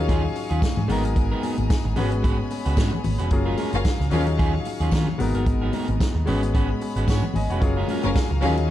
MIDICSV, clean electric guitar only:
0, 0, Header, 1, 3, 480
1, 0, Start_track
1, 0, Tempo, 538117
1, 1035, Time_signature, 4, 2, 24, 8
1, 7763, End_track
2, 0, Start_track
2, 0, Title_t, "Clean electric guitar"
2, 0, Program_c, 0, 27
2, 75, Note_on_c, 0, 54, 102
2, 83, Note_on_c, 0, 61, 107
2, 86, Note_on_c, 0, 65, 98
2, 91, Note_on_c, 0, 68, 106
2, 198, Note_off_c, 0, 68, 0
2, 205, Note_off_c, 0, 65, 0
2, 210, Note_off_c, 0, 61, 0
2, 219, Note_off_c, 0, 54, 0
2, 445, Note_on_c, 0, 68, 57
2, 450, Note_on_c, 0, 65, 55
2, 456, Note_on_c, 0, 61, 55
2, 462, Note_on_c, 0, 54, 46
2, 537, Note_off_c, 0, 68, 0
2, 540, Note_off_c, 0, 54, 0
2, 540, Note_off_c, 0, 65, 0
2, 543, Note_off_c, 0, 61, 0
2, 787, Note_on_c, 0, 54, 83
2, 792, Note_on_c, 0, 59, 91
2, 798, Note_on_c, 0, 63, 84
2, 804, Note_on_c, 0, 70, 99
2, 927, Note_off_c, 0, 70, 0
2, 931, Note_off_c, 0, 63, 0
2, 934, Note_off_c, 0, 59, 0
2, 935, Note_off_c, 0, 54, 0
2, 1173, Note_on_c, 0, 70, 82
2, 1176, Note_on_c, 0, 63, 76
2, 1181, Note_on_c, 0, 59, 77
2, 1186, Note_on_c, 0, 54, 63
2, 1260, Note_off_c, 0, 54, 0
2, 1267, Note_off_c, 0, 59, 0
2, 1271, Note_on_c, 0, 54, 59
2, 1274, Note_off_c, 0, 63, 0
2, 1276, Note_off_c, 0, 70, 0
2, 1278, Note_on_c, 0, 59, 61
2, 1284, Note_on_c, 0, 63, 62
2, 1286, Note_on_c, 0, 70, 70
2, 1388, Note_off_c, 0, 54, 0
2, 1391, Note_off_c, 0, 59, 0
2, 1394, Note_off_c, 0, 63, 0
2, 1395, Note_off_c, 0, 70, 0
2, 1748, Note_on_c, 0, 56, 97
2, 1754, Note_on_c, 0, 61, 107
2, 1759, Note_on_c, 0, 66, 100
2, 1761, Note_on_c, 0, 71, 100
2, 1872, Note_off_c, 0, 71, 0
2, 1881, Note_off_c, 0, 66, 0
2, 1888, Note_off_c, 0, 61, 0
2, 1895, Note_off_c, 0, 56, 0
2, 1986, Note_on_c, 0, 56, 86
2, 1992, Note_on_c, 0, 61, 77
2, 1995, Note_on_c, 0, 66, 94
2, 2002, Note_on_c, 0, 71, 102
2, 2115, Note_off_c, 0, 71, 0
2, 2120, Note_off_c, 0, 66, 0
2, 2125, Note_off_c, 0, 61, 0
2, 2134, Note_off_c, 0, 56, 0
2, 2368, Note_on_c, 0, 71, 63
2, 2371, Note_on_c, 0, 66, 67
2, 2381, Note_on_c, 0, 61, 64
2, 2384, Note_on_c, 0, 56, 56
2, 2458, Note_off_c, 0, 71, 0
2, 2460, Note_off_c, 0, 66, 0
2, 2462, Note_off_c, 0, 56, 0
2, 2465, Note_off_c, 0, 61, 0
2, 2472, Note_on_c, 0, 56, 80
2, 2480, Note_on_c, 0, 61, 88
2, 2485, Note_on_c, 0, 66, 92
2, 2489, Note_on_c, 0, 73, 97
2, 2602, Note_off_c, 0, 66, 0
2, 2603, Note_off_c, 0, 73, 0
2, 2607, Note_off_c, 0, 61, 0
2, 2617, Note_off_c, 0, 56, 0
2, 2842, Note_on_c, 0, 71, 65
2, 2849, Note_on_c, 0, 66, 63
2, 2855, Note_on_c, 0, 61, 48
2, 2861, Note_on_c, 0, 56, 48
2, 2935, Note_off_c, 0, 71, 0
2, 2939, Note_off_c, 0, 56, 0
2, 2939, Note_off_c, 0, 66, 0
2, 2942, Note_off_c, 0, 61, 0
2, 3082, Note_on_c, 0, 70, 83
2, 3087, Note_on_c, 0, 65, 77
2, 3097, Note_on_c, 0, 61, 78
2, 3099, Note_on_c, 0, 56, 59
2, 3180, Note_off_c, 0, 56, 0
2, 3183, Note_off_c, 0, 61, 0
2, 3190, Note_off_c, 0, 65, 0
2, 3191, Note_on_c, 0, 56, 69
2, 3194, Note_on_c, 0, 61, 72
2, 3195, Note_off_c, 0, 70, 0
2, 3200, Note_on_c, 0, 65, 75
2, 3206, Note_on_c, 0, 70, 66
2, 3307, Note_off_c, 0, 56, 0
2, 3309, Note_off_c, 0, 61, 0
2, 3312, Note_off_c, 0, 65, 0
2, 3314, Note_off_c, 0, 70, 0
2, 3670, Note_on_c, 0, 54, 86
2, 3679, Note_on_c, 0, 61, 91
2, 3682, Note_on_c, 0, 65, 98
2, 3688, Note_on_c, 0, 68, 100
2, 3796, Note_off_c, 0, 68, 0
2, 3804, Note_off_c, 0, 65, 0
2, 3810, Note_off_c, 0, 61, 0
2, 3816, Note_off_c, 0, 54, 0
2, 3903, Note_on_c, 0, 54, 102
2, 3911, Note_on_c, 0, 61, 99
2, 3916, Note_on_c, 0, 65, 92
2, 3920, Note_on_c, 0, 68, 116
2, 4038, Note_off_c, 0, 68, 0
2, 4043, Note_off_c, 0, 65, 0
2, 4046, Note_off_c, 0, 61, 0
2, 4052, Note_off_c, 0, 54, 0
2, 4286, Note_on_c, 0, 68, 65
2, 4298, Note_on_c, 0, 65, 64
2, 4299, Note_on_c, 0, 61, 59
2, 4307, Note_on_c, 0, 54, 59
2, 4377, Note_off_c, 0, 68, 0
2, 4383, Note_off_c, 0, 65, 0
2, 4384, Note_off_c, 0, 61, 0
2, 4385, Note_off_c, 0, 54, 0
2, 4395, Note_on_c, 0, 54, 78
2, 4403, Note_on_c, 0, 61, 82
2, 4407, Note_on_c, 0, 65, 82
2, 4413, Note_on_c, 0, 70, 96
2, 4529, Note_off_c, 0, 70, 0
2, 4531, Note_off_c, 0, 65, 0
2, 4537, Note_off_c, 0, 61, 0
2, 4539, Note_off_c, 0, 54, 0
2, 4772, Note_on_c, 0, 70, 69
2, 4774, Note_on_c, 0, 63, 61
2, 4783, Note_on_c, 0, 59, 51
2, 4788, Note_on_c, 0, 54, 51
2, 4861, Note_off_c, 0, 54, 0
2, 4861, Note_off_c, 0, 70, 0
2, 4862, Note_off_c, 0, 63, 0
2, 4866, Note_off_c, 0, 59, 0
2, 5009, Note_on_c, 0, 70, 86
2, 5016, Note_on_c, 0, 63, 68
2, 5021, Note_on_c, 0, 59, 68
2, 5025, Note_on_c, 0, 54, 73
2, 5095, Note_off_c, 0, 54, 0
2, 5104, Note_off_c, 0, 59, 0
2, 5106, Note_on_c, 0, 54, 73
2, 5110, Note_off_c, 0, 63, 0
2, 5113, Note_off_c, 0, 70, 0
2, 5115, Note_on_c, 0, 59, 70
2, 5120, Note_on_c, 0, 63, 77
2, 5124, Note_on_c, 0, 70, 78
2, 5225, Note_off_c, 0, 54, 0
2, 5229, Note_off_c, 0, 59, 0
2, 5232, Note_off_c, 0, 63, 0
2, 5234, Note_off_c, 0, 70, 0
2, 5591, Note_on_c, 0, 56, 80
2, 5596, Note_on_c, 0, 61, 105
2, 5600, Note_on_c, 0, 66, 105
2, 5608, Note_on_c, 0, 71, 121
2, 5724, Note_off_c, 0, 71, 0
2, 5729, Note_off_c, 0, 66, 0
2, 5735, Note_off_c, 0, 61, 0
2, 5737, Note_off_c, 0, 56, 0
2, 5832, Note_on_c, 0, 56, 97
2, 5838, Note_on_c, 0, 61, 97
2, 5846, Note_on_c, 0, 66, 93
2, 5846, Note_on_c, 0, 71, 101
2, 5958, Note_off_c, 0, 71, 0
2, 5967, Note_off_c, 0, 66, 0
2, 5973, Note_off_c, 0, 61, 0
2, 5977, Note_off_c, 0, 56, 0
2, 6212, Note_on_c, 0, 71, 68
2, 6218, Note_on_c, 0, 66, 68
2, 6224, Note_on_c, 0, 61, 60
2, 6227, Note_on_c, 0, 56, 61
2, 6301, Note_off_c, 0, 71, 0
2, 6304, Note_off_c, 0, 66, 0
2, 6307, Note_off_c, 0, 61, 0
2, 6308, Note_off_c, 0, 56, 0
2, 6323, Note_on_c, 0, 56, 81
2, 6325, Note_on_c, 0, 61, 87
2, 6332, Note_on_c, 0, 66, 90
2, 6335, Note_on_c, 0, 73, 91
2, 6451, Note_off_c, 0, 73, 0
2, 6453, Note_off_c, 0, 66, 0
2, 6460, Note_off_c, 0, 61, 0
2, 6463, Note_off_c, 0, 56, 0
2, 6706, Note_on_c, 0, 66, 68
2, 6706, Note_on_c, 0, 71, 71
2, 6714, Note_on_c, 0, 61, 60
2, 6719, Note_on_c, 0, 56, 52
2, 6788, Note_off_c, 0, 66, 0
2, 6788, Note_off_c, 0, 71, 0
2, 6792, Note_off_c, 0, 61, 0
2, 6795, Note_off_c, 0, 56, 0
2, 6931, Note_on_c, 0, 70, 82
2, 6935, Note_on_c, 0, 65, 72
2, 6939, Note_on_c, 0, 61, 69
2, 6945, Note_on_c, 0, 56, 71
2, 7024, Note_off_c, 0, 56, 0
2, 7026, Note_off_c, 0, 61, 0
2, 7032, Note_off_c, 0, 65, 0
2, 7035, Note_on_c, 0, 56, 66
2, 7036, Note_on_c, 0, 61, 69
2, 7043, Note_off_c, 0, 70, 0
2, 7043, Note_on_c, 0, 65, 70
2, 7053, Note_on_c, 0, 70, 80
2, 7150, Note_off_c, 0, 56, 0
2, 7151, Note_off_c, 0, 61, 0
2, 7154, Note_off_c, 0, 65, 0
2, 7156, Note_off_c, 0, 70, 0
2, 7505, Note_on_c, 0, 54, 99
2, 7509, Note_on_c, 0, 61, 98
2, 7514, Note_on_c, 0, 65, 102
2, 7520, Note_on_c, 0, 68, 108
2, 7636, Note_off_c, 0, 68, 0
2, 7641, Note_off_c, 0, 65, 0
2, 7642, Note_off_c, 0, 61, 0
2, 7655, Note_off_c, 0, 54, 0
2, 7763, End_track
3, 0, Start_track
3, 0, Title_t, "Muted clean electric guitar strokes"
3, 209, Note_on_c, 9, 29, 49
3, 298, Note_off_c, 9, 29, 0
3, 318, Note_on_c, 9, 29, 43
3, 407, Note_off_c, 9, 29, 0
3, 551, Note_on_c, 9, 29, 39
3, 640, Note_off_c, 9, 29, 0
3, 692, Note_on_c, 9, 29, 49
3, 781, Note_off_c, 9, 29, 0
3, 938, Note_on_c, 9, 29, 45
3, 1027, Note_off_c, 9, 29, 0
3, 1042, Note_on_c, 9, 29, 43
3, 1131, Note_off_c, 9, 29, 0
3, 1411, Note_on_c, 9, 29, 45
3, 1501, Note_off_c, 9, 29, 0
3, 1511, Note_on_c, 9, 29, 47
3, 1601, Note_off_c, 9, 29, 0
3, 1650, Note_on_c, 9, 29, 49
3, 1739, Note_off_c, 9, 29, 0
3, 1883, Note_on_c, 9, 29, 38
3, 1972, Note_off_c, 9, 29, 0
3, 2126, Note_on_c, 9, 29, 52
3, 2215, Note_off_c, 9, 29, 0
3, 2235, Note_on_c, 9, 29, 38
3, 2324, Note_off_c, 9, 29, 0
3, 2607, Note_on_c, 9, 29, 47
3, 2696, Note_off_c, 9, 29, 0
3, 2711, Note_on_c, 9, 29, 38
3, 2800, Note_off_c, 9, 29, 0
3, 2950, Note_on_c, 9, 29, 33
3, 3039, Note_off_c, 9, 29, 0
3, 3326, Note_on_c, 9, 29, 52
3, 3416, Note_off_c, 9, 29, 0
3, 3430, Note_on_c, 9, 29, 46
3, 3519, Note_off_c, 9, 29, 0
3, 3565, Note_on_c, 9, 29, 46
3, 3654, Note_off_c, 9, 29, 0
3, 3807, Note_on_c, 9, 29, 48
3, 3896, Note_off_c, 9, 29, 0
3, 4049, Note_on_c, 9, 29, 53
3, 4138, Note_off_c, 9, 29, 0
3, 4158, Note_on_c, 9, 29, 52
3, 4247, Note_off_c, 9, 29, 0
3, 4532, Note_on_c, 9, 29, 46
3, 4622, Note_off_c, 9, 29, 0
3, 4636, Note_on_c, 9, 29, 41
3, 4725, Note_off_c, 9, 29, 0
3, 4872, Note_on_c, 9, 29, 35
3, 4961, Note_off_c, 9, 29, 0
3, 5253, Note_on_c, 9, 29, 53
3, 5342, Note_off_c, 9, 29, 0
3, 5349, Note_on_c, 9, 29, 41
3, 5439, Note_off_c, 9, 29, 0
3, 5485, Note_on_c, 9, 29, 48
3, 5574, Note_off_c, 9, 29, 0
3, 5734, Note_on_c, 9, 29, 42
3, 5824, Note_off_c, 9, 29, 0
3, 5969, Note_on_c, 9, 29, 64
3, 6058, Note_off_c, 9, 29, 0
3, 6075, Note_on_c, 9, 29, 51
3, 6164, Note_off_c, 9, 29, 0
3, 6455, Note_on_c, 9, 29, 52
3, 6544, Note_off_c, 9, 29, 0
3, 6568, Note_on_c, 9, 29, 39
3, 6658, Note_off_c, 9, 29, 0
3, 6813, Note_on_c, 9, 29, 46
3, 6902, Note_off_c, 9, 29, 0
3, 7167, Note_on_c, 9, 29, 55
3, 7256, Note_off_c, 9, 29, 0
3, 7270, Note_on_c, 9, 29, 43
3, 7359, Note_off_c, 9, 29, 0
3, 7401, Note_on_c, 9, 29, 47
3, 7491, Note_off_c, 9, 29, 0
3, 7646, Note_on_c, 9, 29, 41
3, 7735, Note_off_c, 9, 29, 0
3, 7763, End_track
0, 0, End_of_file